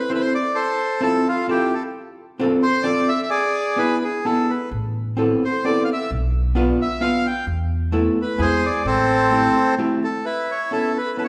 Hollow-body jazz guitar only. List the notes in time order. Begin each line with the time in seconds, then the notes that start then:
0.10 C4 E4 A4 C5
1.01 C4 E4 F4 A4
1.48 C4 E4 F4 A4
2.39 C4 D4 F4 A4
2.84 C4 D4 F4 A4
3.76 B3 D4 E4 G#4
4.25 B3 D4 E4 G#4
5.17 B3 C4 E4 A4
5.65 B3 C4 E4 A4
6.55 B3 D4 F4 B4
7.01 B3 D4 F4 B4
7.92 A3 B3 E4 A4
8.38 G#3 B3 E4 G#4
9.31 A3 C4 E4 G4
9.78 A3 C4 E4 G4
10.71 B3 C#4 E4 A4
11.17 B3 C#4 E4 A4